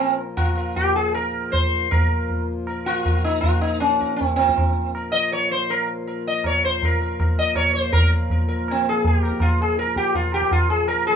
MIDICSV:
0, 0, Header, 1, 4, 480
1, 0, Start_track
1, 0, Tempo, 380952
1, 476, Time_signature, 4, 2, 24, 8
1, 6710, Tempo, 369914
1, 14280, End_track
2, 0, Start_track
2, 0, Title_t, "Sitar"
2, 0, Program_c, 0, 104
2, 0, Note_on_c, 0, 60, 89
2, 0, Note_on_c, 0, 70, 37
2, 197, Note_off_c, 0, 60, 0
2, 222, Note_off_c, 0, 70, 0
2, 466, Note_on_c, 0, 65, 88
2, 719, Note_on_c, 0, 70, 36
2, 944, Note_off_c, 0, 70, 0
2, 961, Note_on_c, 0, 67, 85
2, 971, Note_off_c, 0, 65, 0
2, 1201, Note_off_c, 0, 67, 0
2, 1206, Note_on_c, 0, 68, 86
2, 1437, Note_off_c, 0, 68, 0
2, 1442, Note_on_c, 0, 70, 81
2, 1913, Note_on_c, 0, 72, 90
2, 1942, Note_off_c, 0, 70, 0
2, 2369, Note_off_c, 0, 72, 0
2, 2406, Note_on_c, 0, 70, 81
2, 3080, Note_off_c, 0, 70, 0
2, 3396, Note_on_c, 0, 70, 34
2, 3606, Note_on_c, 0, 65, 82
2, 3609, Note_off_c, 0, 70, 0
2, 3851, Note_on_c, 0, 70, 31
2, 4075, Note_off_c, 0, 70, 0
2, 4082, Note_off_c, 0, 65, 0
2, 4087, Note_on_c, 0, 63, 79
2, 4289, Note_off_c, 0, 63, 0
2, 4294, Note_on_c, 0, 65, 77
2, 4548, Note_off_c, 0, 65, 0
2, 4553, Note_on_c, 0, 63, 67
2, 4786, Note_off_c, 0, 63, 0
2, 4791, Note_on_c, 0, 61, 76
2, 5048, Note_on_c, 0, 70, 36
2, 5242, Note_off_c, 0, 61, 0
2, 5247, Note_on_c, 0, 60, 67
2, 5270, Note_off_c, 0, 70, 0
2, 5479, Note_off_c, 0, 60, 0
2, 5494, Note_on_c, 0, 60, 83
2, 6172, Note_off_c, 0, 60, 0
2, 6262, Note_on_c, 0, 70, 31
2, 6447, Note_on_c, 0, 75, 93
2, 6471, Note_off_c, 0, 70, 0
2, 6702, Note_off_c, 0, 75, 0
2, 6707, Note_on_c, 0, 73, 91
2, 6949, Note_off_c, 0, 73, 0
2, 6954, Note_on_c, 0, 72, 87
2, 7197, Note_on_c, 0, 70, 67
2, 7205, Note_off_c, 0, 72, 0
2, 7424, Note_off_c, 0, 70, 0
2, 7681, Note_on_c, 0, 70, 35
2, 7909, Note_off_c, 0, 70, 0
2, 7941, Note_on_c, 0, 75, 77
2, 8180, Note_off_c, 0, 75, 0
2, 8185, Note_on_c, 0, 73, 86
2, 8418, Note_off_c, 0, 73, 0
2, 8423, Note_on_c, 0, 72, 77
2, 8667, Note_off_c, 0, 72, 0
2, 8685, Note_on_c, 0, 70, 66
2, 8889, Note_off_c, 0, 70, 0
2, 8905, Note_on_c, 0, 70, 36
2, 9126, Note_off_c, 0, 70, 0
2, 9157, Note_on_c, 0, 70, 32
2, 9373, Note_off_c, 0, 70, 0
2, 9385, Note_on_c, 0, 75, 84
2, 9601, Note_off_c, 0, 75, 0
2, 9606, Note_on_c, 0, 73, 90
2, 9830, Note_off_c, 0, 73, 0
2, 9835, Note_on_c, 0, 72, 74
2, 10078, Note_off_c, 0, 72, 0
2, 10083, Note_on_c, 0, 70, 69
2, 10085, Note_off_c, 0, 70, 0
2, 10085, Note_on_c, 0, 70, 36
2, 10111, Note_off_c, 0, 70, 0
2, 10326, Note_on_c, 0, 70, 41
2, 10557, Note_off_c, 0, 70, 0
2, 10585, Note_on_c, 0, 70, 36
2, 10793, Note_off_c, 0, 70, 0
2, 10809, Note_on_c, 0, 70, 44
2, 11038, Note_off_c, 0, 70, 0
2, 11104, Note_on_c, 0, 60, 72
2, 11329, Note_off_c, 0, 60, 0
2, 11335, Note_on_c, 0, 68, 87
2, 11542, Note_off_c, 0, 68, 0
2, 11573, Note_on_c, 0, 68, 75
2, 11715, Note_off_c, 0, 68, 0
2, 11715, Note_on_c, 0, 67, 75
2, 11803, Note_on_c, 0, 70, 40
2, 12011, Note_off_c, 0, 67, 0
2, 12014, Note_off_c, 0, 70, 0
2, 12017, Note_on_c, 0, 65, 82
2, 12263, Note_off_c, 0, 65, 0
2, 12280, Note_on_c, 0, 68, 84
2, 12495, Note_off_c, 0, 68, 0
2, 12500, Note_on_c, 0, 70, 84
2, 12734, Note_off_c, 0, 70, 0
2, 12739, Note_on_c, 0, 67, 91
2, 12970, Note_off_c, 0, 67, 0
2, 12975, Note_on_c, 0, 65, 79
2, 13194, Note_off_c, 0, 65, 0
2, 13215, Note_on_c, 0, 67, 92
2, 13452, Note_off_c, 0, 67, 0
2, 13457, Note_on_c, 0, 65, 93
2, 13680, Note_off_c, 0, 65, 0
2, 13685, Note_on_c, 0, 68, 90
2, 13916, Note_off_c, 0, 68, 0
2, 13922, Note_on_c, 0, 70, 89
2, 14157, Note_off_c, 0, 70, 0
2, 14162, Note_on_c, 0, 68, 101
2, 14280, Note_off_c, 0, 68, 0
2, 14280, End_track
3, 0, Start_track
3, 0, Title_t, "Harmonium"
3, 0, Program_c, 1, 20
3, 0, Note_on_c, 1, 46, 64
3, 0, Note_on_c, 1, 53, 66
3, 2369, Note_off_c, 1, 46, 0
3, 2381, Note_off_c, 1, 53, 0
3, 2388, Note_on_c, 1, 46, 62
3, 2400, Note_on_c, 1, 53, 66
3, 10082, Note_off_c, 1, 46, 0
3, 10085, Note_off_c, 1, 53, 0
3, 10101, Note_on_c, 1, 46, 69
3, 10105, Note_on_c, 1, 53, 70
3, 14280, Note_off_c, 1, 46, 0
3, 14280, Note_off_c, 1, 53, 0
3, 14280, End_track
4, 0, Start_track
4, 0, Title_t, "Tabla"
4, 231, Note_on_c, 9, 60, 60
4, 357, Note_off_c, 9, 60, 0
4, 472, Note_on_c, 9, 60, 85
4, 472, Note_on_c, 9, 64, 66
4, 598, Note_off_c, 9, 60, 0
4, 598, Note_off_c, 9, 64, 0
4, 957, Note_on_c, 9, 63, 74
4, 957, Note_on_c, 9, 64, 65
4, 1083, Note_off_c, 9, 63, 0
4, 1083, Note_off_c, 9, 64, 0
4, 1449, Note_on_c, 9, 60, 73
4, 1575, Note_off_c, 9, 60, 0
4, 1932, Note_on_c, 9, 63, 68
4, 1932, Note_on_c, 9, 64, 64
4, 2058, Note_off_c, 9, 63, 0
4, 2058, Note_off_c, 9, 64, 0
4, 2419, Note_on_c, 9, 60, 92
4, 2419, Note_on_c, 9, 64, 88
4, 2545, Note_off_c, 9, 60, 0
4, 2545, Note_off_c, 9, 64, 0
4, 2889, Note_on_c, 9, 63, 70
4, 2889, Note_on_c, 9, 64, 64
4, 3015, Note_off_c, 9, 63, 0
4, 3015, Note_off_c, 9, 64, 0
4, 3364, Note_on_c, 9, 60, 75
4, 3490, Note_off_c, 9, 60, 0
4, 3850, Note_on_c, 9, 63, 75
4, 3850, Note_on_c, 9, 64, 70
4, 3976, Note_off_c, 9, 63, 0
4, 3976, Note_off_c, 9, 64, 0
4, 4103, Note_on_c, 9, 60, 55
4, 4229, Note_off_c, 9, 60, 0
4, 4326, Note_on_c, 9, 60, 80
4, 4326, Note_on_c, 9, 64, 70
4, 4452, Note_off_c, 9, 60, 0
4, 4452, Note_off_c, 9, 64, 0
4, 4807, Note_on_c, 9, 62, 74
4, 4933, Note_off_c, 9, 62, 0
4, 5066, Note_on_c, 9, 37, 60
4, 5183, Note_on_c, 9, 62, 58
4, 5192, Note_off_c, 9, 37, 0
4, 5302, Note_on_c, 9, 63, 72
4, 5302, Note_on_c, 9, 64, 68
4, 5309, Note_off_c, 9, 62, 0
4, 5428, Note_off_c, 9, 63, 0
4, 5428, Note_off_c, 9, 64, 0
4, 5533, Note_on_c, 9, 60, 62
4, 5659, Note_off_c, 9, 60, 0
4, 5659, Note_on_c, 9, 37, 60
4, 5768, Note_on_c, 9, 60, 76
4, 5768, Note_on_c, 9, 64, 68
4, 5785, Note_off_c, 9, 37, 0
4, 5894, Note_off_c, 9, 60, 0
4, 5894, Note_off_c, 9, 64, 0
4, 6235, Note_on_c, 9, 60, 77
4, 6361, Note_off_c, 9, 60, 0
4, 6714, Note_on_c, 9, 63, 70
4, 6844, Note_off_c, 9, 63, 0
4, 7207, Note_on_c, 9, 60, 84
4, 7337, Note_off_c, 9, 60, 0
4, 7687, Note_on_c, 9, 63, 72
4, 7817, Note_off_c, 9, 63, 0
4, 8159, Note_on_c, 9, 60, 75
4, 8159, Note_on_c, 9, 64, 68
4, 8289, Note_off_c, 9, 60, 0
4, 8289, Note_off_c, 9, 64, 0
4, 8655, Note_on_c, 9, 63, 74
4, 8655, Note_on_c, 9, 64, 64
4, 8785, Note_off_c, 9, 63, 0
4, 8785, Note_off_c, 9, 64, 0
4, 9139, Note_on_c, 9, 60, 78
4, 9139, Note_on_c, 9, 64, 75
4, 9269, Note_off_c, 9, 60, 0
4, 9269, Note_off_c, 9, 64, 0
4, 9380, Note_on_c, 9, 64, 51
4, 9510, Note_off_c, 9, 64, 0
4, 9603, Note_on_c, 9, 60, 77
4, 9603, Note_on_c, 9, 64, 69
4, 9733, Note_off_c, 9, 60, 0
4, 9733, Note_off_c, 9, 64, 0
4, 9854, Note_on_c, 9, 62, 51
4, 9983, Note_off_c, 9, 62, 0
4, 10092, Note_on_c, 9, 60, 99
4, 10092, Note_on_c, 9, 64, 105
4, 10222, Note_off_c, 9, 60, 0
4, 10222, Note_off_c, 9, 64, 0
4, 10571, Note_on_c, 9, 63, 77
4, 10571, Note_on_c, 9, 64, 76
4, 10701, Note_off_c, 9, 63, 0
4, 10701, Note_off_c, 9, 64, 0
4, 11065, Note_on_c, 9, 60, 77
4, 11195, Note_off_c, 9, 60, 0
4, 11537, Note_on_c, 9, 63, 71
4, 11537, Note_on_c, 9, 64, 76
4, 11666, Note_off_c, 9, 63, 0
4, 11666, Note_off_c, 9, 64, 0
4, 11774, Note_on_c, 9, 60, 64
4, 11889, Note_on_c, 9, 37, 68
4, 11903, Note_off_c, 9, 60, 0
4, 11999, Note_on_c, 9, 60, 86
4, 11999, Note_on_c, 9, 64, 78
4, 12019, Note_off_c, 9, 37, 0
4, 12129, Note_off_c, 9, 60, 0
4, 12129, Note_off_c, 9, 64, 0
4, 12476, Note_on_c, 9, 62, 77
4, 12591, Note_off_c, 9, 62, 0
4, 12591, Note_on_c, 9, 62, 56
4, 12720, Note_off_c, 9, 62, 0
4, 12728, Note_on_c, 9, 37, 63
4, 12837, Note_on_c, 9, 62, 63
4, 12858, Note_off_c, 9, 37, 0
4, 12967, Note_off_c, 9, 62, 0
4, 12967, Note_on_c, 9, 63, 85
4, 12967, Note_on_c, 9, 64, 67
4, 13096, Note_off_c, 9, 63, 0
4, 13096, Note_off_c, 9, 64, 0
4, 13194, Note_on_c, 9, 60, 67
4, 13319, Note_on_c, 9, 37, 58
4, 13324, Note_off_c, 9, 60, 0
4, 13443, Note_on_c, 9, 60, 82
4, 13443, Note_on_c, 9, 64, 75
4, 13449, Note_off_c, 9, 37, 0
4, 13572, Note_off_c, 9, 60, 0
4, 13572, Note_off_c, 9, 64, 0
4, 13916, Note_on_c, 9, 60, 96
4, 14046, Note_off_c, 9, 60, 0
4, 14280, End_track
0, 0, End_of_file